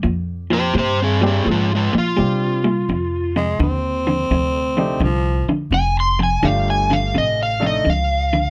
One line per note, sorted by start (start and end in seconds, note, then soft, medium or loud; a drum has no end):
0.03 0.73 F2 medium
0.03 0.46 A#2 medium
0.03 0.46 F3 medium
0.50 0.72 A#2 medium
0.50 0.72 F3 medium
0.50 0.76 G4 medium
0.50 0.75 C5 medium
0.74 1.43 G2 medium
0.74 1.17 A#2 medium
0.74 1.17 G3 medium
0.78 0.98 G4 medium
0.78 1.00 C5 medium
1.02 1.23 C4 medium
1.02 1.24 G#4 medium
1.21 1.43 A#2 medium
1.21 1.43 G3 medium
1.21 1.44 G3 medium
1.21 1.44 C4 medium
1.21 1.44 D4 medium
1.21 1.44 G4 medium
1.26 1.46 C4 medium
1.26 1.48 G#4 medium
1.45 1.90 G#2 medium
1.45 1.88 A#2 medium
1.45 1.88 F3 medium
1.51 1.71 G#3 medium
1.51 1.72 F4 medium
1.75 1.95 G#3 medium
1.75 1.96 F4 medium
1.93 2.15 A#2 medium
1.93 2.15 F3 medium
1.93 muted upright bass stroke soft
1.98 3.34 F4 medium
2.17 2.60 A#2 medium
2.17 2.87 C3 medium
2.17 2.60 G3 soft
2.17 2.60 G3 medium
2.17 2.60 C4 soft
2.17 2.60 D4 soft
2.17 2.60 G4 medium
2.64 2.86 A#2 medium
2.64 2.86 G3 medium
2.89 3.57 F2 medium
2.89 3.32 F2 medium
2.89 3.32 C3 medium
3.36 3.57 F2 medium
3.36 3.57 C3 medium
3.36 3.59 G#3 medium
3.59 4.28 D#2 medium
3.59 4.02 F2 medium
3.59 4.02 D3 medium
3.59 4.99 C4 medium
4.07 4.28 F2 medium
4.07 4.28 D3 medium
4.30 4.99 D2 medium
4.30 4.73 F2 medium
4.30 4.74 C3 medium
4.77 4.99 F2 medium
4.77 4.99 C3 medium
4.77 4.99 A3 medium
4.77 4.99 D4 medium
4.77 4.99 D#4 medium
4.77 5.00 G4 medium
5.00 5.45 C2 medium
5.00 5.44 F2 medium
5.00 5.44 D3 medium
5.00 5.48 F3 medium
5.48 5.70 F2 medium
5.48 5.70 D3 medium
5.48 muted upright bass stroke soft
5.71 6.40 F1 medium
5.71 6.15 F2 medium
5.71 6.15 C3 medium
5.71 5.96 G#5 medium
6.00 6.21 C6 medium
6.19 6.41 F2 medium
6.19 6.41 C3 medium
6.23 6.45 G#5 medium
6.42 7.12 G1 medium
6.42 6.86 F2 medium
6.42 6.86 D3 medium
6.42 7.52 A3 medium
6.42 7.52 D4 medium
6.42 7.52 F4 medium
6.42 7.53 G4 medium
6.42 6.67 F5 medium
6.70 6.92 G#5 medium
6.90 7.12 F2 medium
6.90 7.12 D3 medium
6.90 7.15 F5 medium
7.14 7.83 A1 medium
7.14 7.57 F2 medium
7.14 7.57 C3 medium
7.18 7.39 D#5 medium
7.43 7.63 F5 medium
7.60 7.83 F2 medium
7.60 7.83 C3 medium
7.60 7.82 A3 medium
7.60 7.82 D4 medium
7.60 7.83 D#4 medium
7.60 7.82 A4 medium
7.67 7.87 D#5 medium
7.85 8.50 C#2 medium
7.85 8.28 F2 medium
7.85 8.28 D3 medium
7.90 8.50 F5 medium
8.33 8.50 F2 medium
8.33 8.50 D3 medium